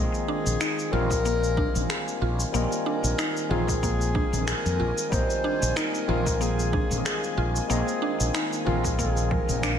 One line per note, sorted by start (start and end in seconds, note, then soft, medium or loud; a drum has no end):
0.00 9.79 D#3 medium
0.00 0.88 G#3 medium
0.00 0.13 A#3 medium
0.00 9.79 A#3 medium
0.00 0.89 C4 medium
0.00 0.89 F4 medium
0.00 0.94 G#4 loud
0.00 0.90 A#4 medium
0.00 0.90 D#5 medium
0.00 9.79 G#5 medium
0.14 cabasa soft
0.28 0.38 D4 medium
0.46 0.55 A#1 medium
0.46 cabasa medium
0.61 0.91 D#4 loud
0.61 finger snap loud
0.61 cabasa medium
0.79 cabasa soft
0.91 1.64 A#1 medium
0.91 2.50 G3 medium
0.91 2.50 C4 medium
0.91 1.24 F4 medium
0.91 2.51 F4 medium
0.91 2.21 A#4 loud
0.91 2.51 A#4 medium
0.91 low conga medium
0.95 2.52 F5 loud
1.11 kick loud
1.11 cabasa medium
1.25 1.42 A#3 medium
1.25 cabasa medium
1.44 cabasa soft
1.57 1.68 D4 medium
1.57 kick loud
1.75 1.84 A#1 medium
1.75 low conga medium
1.75 cabasa medium
1.90 2.00 G#4 medium
1.90 finger snap loud
1.90 cabasa medium
2.08 cabasa soft
2.21 2.43 A#1 medium
2.21 2.32 F4 medium
2.40 cabasa medium
2.52 2.65 A#1 medium
2.52 3.46 G3 medium
2.52 2.71 A#3 medium
2.52 3.47 C4 medium
2.52 3.47 F4 medium
2.52 3.48 A#4 medium
2.52 3.48 D#5 medium
2.52 cabasa medium
2.72 cabasa soft
2.86 2.96 D4 medium
2.86 3.52 A#4 loud
3.04 3.13 A#1 medium
3.04 cabasa medium
3.18 3.49 D#4 loud
3.18 finger snap loud
3.18 cabasa medium
3.37 cabasa soft
3.49 4.22 A#1 medium
3.49 5.08 G#3 medium
3.49 5.08 C4 medium
3.49 3.82 F4 medium
3.49 5.09 F4 medium
3.49 4.47 G#4 loud
3.49 5.09 A#4 medium
3.49 5.10 F5 medium
3.49 low conga medium
3.69 kick loud
3.69 cabasa medium
3.83 4.00 A#3 medium
3.83 kick medium
3.83 cabasa medium
4.01 cabasa soft
4.15 4.25 D4 medium
4.15 kick loud
4.33 4.51 A#1 medium
4.33 low conga medium
4.33 cabasa medium
4.47 4.58 G#4 medium
4.47 5.14 A#4 loud
4.47 finger snap loud
4.47 cabasa medium
4.65 4.81 F2 loud
4.65 cabasa soft
4.80 4.91 A#1 loud
4.80 4.90 F4 medium
4.98 cabasa medium
5.10 5.23 A#1 loud
5.10 6.04 G3 medium
5.10 5.29 A#3 medium
5.10 6.05 C4 medium
5.10 6.05 F4 medium
5.10 6.06 A#4 medium
5.10 5.79 C5 loud
5.10 kick loud
5.10 cabasa medium
5.14 6.06 D#5 medium
5.30 cabasa soft
5.44 5.54 D4 medium
5.62 5.71 A#1 medium
5.62 cabasa medium
5.76 6.07 D#4 loud
5.76 6.43 A#4 loud
5.76 finger snap loud
5.76 cabasa medium
5.95 cabasa soft
6.06 6.80 A#1 medium
6.06 7.65 G#3 medium
6.06 7.66 C4 medium
6.06 7.66 F4 medium
6.06 6.40 F4 medium
6.06 7.67 A#4 medium
6.06 low conga medium
6.10 7.67 F5 loud
6.27 kick loud
6.27 cabasa medium
6.41 6.58 A#3 medium
6.41 6.99 G#4 loud
6.41 cabasa medium
6.59 cabasa soft
6.73 6.83 D4 medium
6.73 kick loud
6.91 7.00 A#1 medium
6.91 low conga medium
6.91 cabasa medium
6.99 7.07 A#4 medium
7.05 7.16 G#4 medium
7.05 7.56 G#4 loud
7.05 finger snap loud
7.05 cabasa medium
7.24 cabasa soft
7.37 7.59 A#1 medium
7.37 7.48 F4 medium
7.56 cabasa medium
7.68 7.81 A#1 loud
7.68 8.62 G#3 medium
7.68 7.87 A#3 medium
7.68 8.63 C4 medium
7.68 8.63 F4 medium
7.68 8.36 G#4 loud
7.68 8.64 A#4 medium
7.68 cabasa medium
7.72 8.64 D#5 medium
7.88 cabasa soft
8.02 8.12 D4 medium
8.20 8.29 A#1 medium
8.20 cabasa medium
8.34 8.65 D#4 loud
8.34 finger snap loud
8.34 cabasa medium
8.53 cabasa soft
8.65 9.38 A#1 medium
8.65 9.79 G#3 medium
8.65 9.79 C4 medium
8.65 8.97 F4 medium
8.65 9.79 F4 medium
8.65 9.00 A#4 loud
8.65 9.79 A#4 medium
8.65 9.79 F5 loud
8.65 low conga medium
8.85 kick loud
8.85 cabasa medium
8.99 9.16 A#3 medium
8.99 9.33 G#4 medium
8.99 kick medium
8.99 cabasa medium
9.17 cabasa soft
9.31 9.47 F3 medium
9.31 9.79 A#4 loud
9.31 kick loud
9.49 9.79 A#1 loud
9.49 low conga medium
9.49 cabasa medium
9.63 9.74 D4 medium
9.63 finger snap loud
9.63 cabasa medium